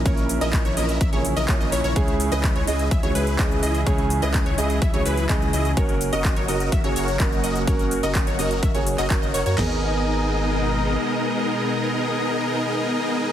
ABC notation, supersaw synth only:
X:1
M:4/4
L:1/16
Q:1/4=126
K:G#m
V:1 name="Supersaw synth"
[EAc]2 z [EAd]2 [EAc] [EAd]2 [EAe] [EAc] z [EAd] [EAc] [EAd] [EAc] [EAc] | [EGc]2 z [EGd]2 [EGc] [EGd]2 [EGe] [EGc] [EGB]2 [EGd]2 [EGd]2 | [EGc]2 z [EGd]2 [EGc] [EGd]2 [EGe] [EGc] [EGB]2 [EGd]2 [EGd]2 | [FAc]2 z [FAd]2 [FAc] [FAd]2 [FAe] [FAc] [FAc]2 [FAd]2 [FAd]2 |
[FAc]2 z [FAd]2 [FAc] [FAd]2 [FAe] [FAc] z [FAd] [FAc] [FAd] [FAc] [FAc] | [B,DGAd]16- | [B,DGAd]16 |]